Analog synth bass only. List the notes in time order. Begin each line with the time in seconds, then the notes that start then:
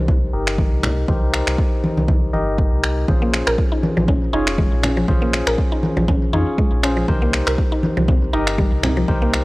Already playing: C2
0.33 G1
0.72 C2
1.08 C2
1.47 C2
1.97 C2
2.33 G1
2.72 C2
3.08 A#1
3.47 A#1
3.97 A#1
4.33 F1
4.72 A#1
5.08 A#1
5.47 A#1
5.97 A#1
6.33 F2
6.72 A#1
7.08 C2
7.47 C2
7.97 C2
8.33 G1
8.72 C2
9.08 C2